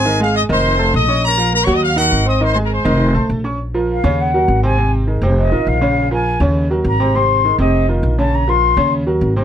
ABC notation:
X:1
M:4/4
L:1/8
Q:1/4=203
K:Bbm
V:1 name="Flute"
z8 | z8 | z8 | z2 f2 g3 a- |
a z3 e2 f2- | f a2 z3 b2 | c'3 e2 z2 =a | b c'3 z4 |]
V:2 name="Trumpet section"
[Aa] f [ee'] [cc']3 [ee']2 | [Bb]2 (3[Bb] [dd'] [ee'] f [Gg]2 [ee'] | (3[cc'] [cc'] [Bb] [cc']4 z2 | z8 |
z8 | z8 | z8 | z8 |]
V:3 name="Grand piano"
[E,Ee] [A,Aa]2 [E,Ee]2 [=A,=A=a]2 [Ddd']- | [Ddd'] [F,Ff] [B,Bb] [G,Gg]2 [E,Ee]2 [Ccc'] | [E,Ee] [A,Aa]2 [E,Ee]2 [=A,=A=a]2 [Ddd'] | z [F,FB]2 [D,Dd]2 [G,GB]2 [C,Cc] |
[C,Cc]2 [E,EA] [C,Cc]2 [E,EF]2 [D,Dd]- | [D,Dd] [F,FB]2 [D,Dd]2 [G,GB]2 [C,Cc] | [C,Cc]2 [E,EA] [C,Cc]2 [E,EF]2 [D,Dd]- | [D,Dd] [F,FB]2 [D,Dd]2 [G,GB]2 [C,Cc] |]
V:4 name="Upright bass" clef=bass
A,,,3 F,,,3 B,,,2- | B,,,3 E,,3 A,,,2- | A,,,3 F,,,2 =A,,, B,,,2- | B,,,3 E,,3 A,,,2- |
A,,,3 F,,,2 =A,,, B,,,2- | B,,,3 E,,3 A,,,2- | A,,,3 F,,,3 B,,,2- | B,,,3 E,,3 A,,,2 |]